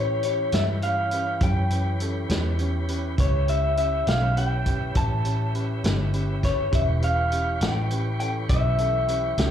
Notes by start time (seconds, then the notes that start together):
Already playing: A2 E3 C#4 G4 B4 C#5
0.23 C#4 G4 B4 C#5, closed hi-hat
0.52 G2 C#4 G4 B4 E5, snare, closed hi-hat
0.82 C#4 G4 B4 F5, closed hi-hat
1.11 C#4 G4 B4, closed hi-hat
1.41 F#2 C#4 G4 B4 G5, kick, closed hi-hat
1.70 C#4 G4 B4, closed hi-hat
2.00 C#4 G4 A4, closed hi-hat
2.29 E2 C#4 G4 B4, snare, closed hi-hat
2.59 C#4 G4 C#5, closed hi-hat
2.88 C#4 G4 B4, closed hi-hat
3.17 C#2 C#4 E4 G4 B4 C#5, kick, closed hi-hat
3.48 C#4 G4 B4 E5, closed hi-hat
3.77 C#4 G4 B4 E5, closed hi-hat
4.07 B1 C#4 G4 B4 F5, snare, closed hi-hat
4.36 C#4 G4 B4 G5, closed hi-hat
4.66 C#4 G4 B4, kick, closed hi-hat
4.94 A1 C#4 G4 B4 A5, kick, closed hi-hat
5.25 C#4 G4 B4, closed hi-hat
5.54 C#4 G4 B4, closed hi-hat
5.83 G1 C#4 G4 B4, snare, closed hi-hat
6.13 C#4 G4 B4, closed hi-hat
6.43 C#4 G4 B4 C#5, kick, snare, closed hi-hat
6.71 E1 E3 C#4 G4 B4 C#5, kick, closed hi-hat
6.75 E5
7.01 C#4 G4 B4 F5, closed hi-hat
7.32 C#4 G4 B4, closed hi-hat
7.61 A1 C#4 G4 B4 G5, snare, closed hi-hat
7.90 C#4 G4 B4, closed hi-hat
8.20 C#4 G4 A4 G5, closed hi-hat
8.49 B1 C#4 G4 B4 E5, kick, closed hi-hat
8.78 C#4 G4 A4, closed hi-hat
9.08 C#4 G4 B4, closed hi-hat
9.38 C#2 C#4 G4 A4, snare, closed hi-hat